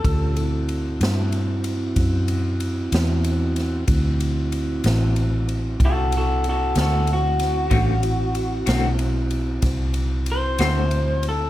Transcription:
<<
  \new Staff \with { instrumentName = "Clean electric guitar" } { \time 12/8 \key d \major \tempo 4. = 63 a'2 r1 | r2. <fis' a'>8 <fis' a'>8 <fis' a'>8 <fis' a'>8 fis'4~ | fis'2 r2 c''8 c''4 a'8 | }
  \new Staff \with { instrumentName = "Tonewheel organ" } { \time 12/8 \key d \major <cis' f' g'>8 <c' e' fis'>1~ <c' e' fis'>4. | <c' e' fis'>1. | <g cis' f''>8 <c' e' fis'>1~ <c' e' fis'>4. | }
  \new Staff \with { instrumentName = "Clean electric guitar" } { \time 12/8 \key d \major r1. | r1. | <d a c' fis'>8 r4 <d a c' fis'>8 r2 r8 <d a c' fis'>8 r4 | }
  \new Staff \with { instrumentName = "Fingered electric bass" } { \clef bass \time 12/8 \key d \major d,4. g,4. fis,4. e,4. | d,4. a,,4. c,4. d,4. | a,,4. b,,4. c,4. d,4. | }
  \new DrumStaff \with { instrumentName = "Drums" } \drummode { \time 12/8 <bd cymr>8 cymr8 cymr8 <cymr sn>8 cymr8 cymr8 <bd cymr sn>8 cymr8 cymr8 <cymr sn>8 cymr8 <cymr sn>8 | <bd cymr>8 cymr8 cymr8 <cymr sn>8 cymr8 cymr8 <bd cymr>8 cymr8 cymr8 <cymr sn>8 cymr8 <cymr sn>8 | <bd cymr>8 cymr8 cymr8 <cymr sn>8 cymr8 cymr8 <bd cymr sn>8 cymr8 cymr8 <cymr sn>8 cymr8 cymr8 | }
>>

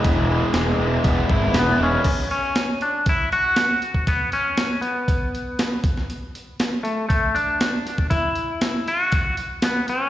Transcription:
<<
  \new Staff \with { instrumentName = "Clean electric guitar" } { \time 4/4 \key e \mixolydian \tempo 4 = 119 r2. b8 cis'8~ | cis'8 cis'4 d'8 e'8 fis'4. | b8 cis'4 b2 r8 | r4. a8 a8 d'4. |
e'4. fis'4 r8 b8 cis'8 | }
  \new Staff \with { instrumentName = "Overdriven electric guitar" } { \clef bass \time 4/4 \key e \mixolydian <e gis b e'>8 gis8 gis8 e8 b8 e'8 b8 gis8 | r1 | r1 | r1 |
r1 | }
  \new Staff \with { instrumentName = "Picked electric bass" } { \clef bass \time 4/4 \key e \mixolydian e,,4 e,,8 e,,8 e,,8 gis,,8 e,,8 e,,8 | r1 | r1 | r1 |
r1 | }
  \new DrumStaff \with { instrumentName = "Drums" } \drummode { \time 4/4 <hho bd>4 <hho sn>4 <hho bd>8 bd8 <hho sn>4 | <cymc hho bd>8 hho8 <hho sn>8 hho8 <hho bd>8 hho8 <hho sn>8 hho16 bd16 | <hho bd>8 hho8 <hho sn>8 hho8 <hho bd>8 hho8 <hho sn>8 <hho bd>16 sn16 | hho8 hho8 <hho sn>8 hho8 <hho bd>8 hho8 <hho sn>8 <hho sn>16 bd16 |
<hho bd>8 hho8 <hho sn>8 hho8 <hho bd>8 hho8 <hho sn>8 hho8 | }
>>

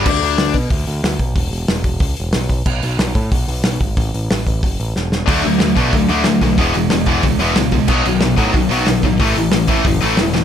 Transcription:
<<
  \new Staff \with { instrumentName = "Distorted electric guitar" } { \clef bass \time 4/4 \key e \major \tempo 4 = 184 r1 | r1 | r1 | r1 |
<d fis a>8 <d fis>8 <d fis>8 <d fis a>8 <d fis>8 <d fis a>8 <d fis>8 <d fis>8 | <e gis b>8 <e gis>8 <e gis>8 <e gis b>8 <e gis>8 <e gis b>8 <e gis>8 <e gis>8 | <b, dis fis>8 <b, dis>8 <b, dis>8 <b, dis fis>8 <b, dis>8 <b, dis fis>8 <b, dis>8 <b, dis>8 | <a, e a>8 <a, e>8 <a, e>8 <a, e a>8 <a, e>8 <a, e a>8 <a, e>8 <a, e>8 | }
  \new Staff \with { instrumentName = "Distorted electric guitar" } { \clef bass \time 4/4 \key e \major r1 | r1 | r1 | r1 |
<d a d'>8 <d a>8 <d a>8 <d a d'>8 <d a>8 <d a d'>8 <d a>8 <d a>8 | <e, b, e>8 <e, b,>8 <e, b,>8 <e, b, e>8 <e, b,>8 <e, b, e>8 <e, b,>8 <e, b,>8 | <b, fis b>8 <b, fis>8 <b, fis>8 <b, fis b>8 <b, fis>8 <b, fis b>8 <b, fis>8 <b, fis>8 | <a, e a>8 <a, e>8 <a, e>8 <a, e a>8 <a, e>8 <a, e a>8 <a, e>8 <a, e>8 | }
  \new Staff \with { instrumentName = "Picked electric bass" } { \clef bass \time 4/4 \key e \major d,8 d,8 d,8 b,8 d,8 d,8 d,8 b,,8 | e,,8 e,,8 e,,8 e,,8 cis,8 e,,8 b,,4 | b,,8 b,,8 b,,8 a,8 b,,8 b,,8 b,,8 gis,,8 | a,,8 a,,8 a,,8 a,,8 fis,,8 a,,8 e,,4 |
d,8 d,8 d,8 b,8 d,8 d,8 d,8 b,,8 | e,,8 e,,8 e,,8 e,,8 cis,8 e,,8 cis,4 | b,,8 b,,8 b,,8 a,8 b,,8 b,,8 b,,8 a,,8 | a,,8 a,,8 a,,8 a,,8 fis,,8 a,,8 e,,4 | }
  \new DrumStaff \with { instrumentName = "Drums" } \drummode { \time 4/4 <cymc bd>8 hho8 <hho sn>8 <hho bd>8 <hho bd>8 hho8 <hho sn>8 <hho bd>8 | <hho bd>8 hho8 <hho sn>8 <hho bd>8 <hho bd>8 hho8 <hho sn>8 <hho bd>8 | <cymc bd>8 hho8 <hho sn>8 <hho bd>8 <hho bd>8 hho8 <hho sn>8 <hho bd>8 | <hho bd>8 hho8 <hho sn>8 <hho bd>8 <hho bd>8 hho8 sn8 sn8 |
<cymc hho bd>8 hho8 <hho sn>8 <hho bd>8 <hho bd>8 hho8 <hho sn>8 <hho bd>8 | <hho bd>8 hho8 <hho sn>8 <hho bd>8 <hho bd>8 hho8 <hho sn>8 <hho bd>8 | <cymc bd>8 hho8 <hho sn>8 <hho bd>8 <hho bd>8 hho8 <hho sn>8 <hho bd>8 | <hho bd>8 hho8 <hho sn>8 <hho bd>8 <hho bd>8 hho8 <hho sn>8 sn8 | }
>>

